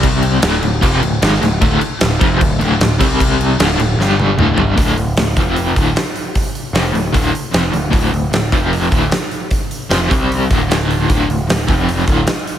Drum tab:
CC |xxxxxxxx|xxxxxxxx|xxxx----|--------|
HH |--------|--------|--------|oooooooo|
SD |--o---oo|--o---oo|--o-o---|--o---o-|
T1 |--------|--------|-----o--|--------|
T2 |--------|--------|------o-|--------|
FT |--------|--------|-------o|--------|
BD |o---o---|o--oo--o|o-------|o--o-o--|

CC |--------|--------|--------|--------|
HH |oooooooo|oooooooo|oooooooo|oooooooo|
SD |--o---o-|--o---o-|--o---o-|--o---o-|
T1 |--------|--------|--------|--------|
T2 |--------|--------|--------|--------|
FT |--------|--------|--------|--------|
BD |o---o---|o--o-o--|o--o-o--|o--o-o--|